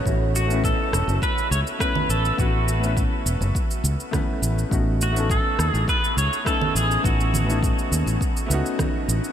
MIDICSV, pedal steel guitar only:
0, 0, Header, 1, 2, 480
1, 0, Start_track
1, 0, Tempo, 582524
1, 44, Time_signature, 4, 2, 24, 8
1, 7682, End_track
2, 0, Start_track
2, 0, Title_t, "Pedal steel guitar"
2, 0, Program_c, 0, 26
2, 296, Note_on_c, 0, 66, 80
2, 529, Note_off_c, 0, 66, 0
2, 532, Note_on_c, 0, 69, 86
2, 1013, Note_on_c, 0, 71, 101
2, 1023, Note_off_c, 0, 69, 0
2, 1245, Note_off_c, 0, 71, 0
2, 1248, Note_on_c, 0, 73, 93
2, 1313, Note_off_c, 0, 73, 0
2, 1488, Note_on_c, 0, 71, 100
2, 1732, Note_on_c, 0, 69, 84
2, 1733, Note_off_c, 0, 71, 0
2, 1975, Note_off_c, 0, 69, 0
2, 1975, Note_on_c, 0, 66, 74
2, 2417, Note_off_c, 0, 66, 0
2, 4142, Note_on_c, 0, 66, 84
2, 4376, Note_on_c, 0, 69, 82
2, 4380, Note_off_c, 0, 66, 0
2, 4697, Note_off_c, 0, 69, 0
2, 4697, Note_on_c, 0, 68, 82
2, 4817, Note_off_c, 0, 68, 0
2, 4855, Note_on_c, 0, 71, 100
2, 5090, Note_off_c, 0, 71, 0
2, 5093, Note_on_c, 0, 73, 97
2, 5327, Note_on_c, 0, 69, 101
2, 5336, Note_off_c, 0, 73, 0
2, 5573, Note_off_c, 0, 69, 0
2, 5576, Note_on_c, 0, 68, 88
2, 5794, Note_off_c, 0, 68, 0
2, 5808, Note_on_c, 0, 66, 79
2, 6253, Note_off_c, 0, 66, 0
2, 7682, End_track
0, 0, End_of_file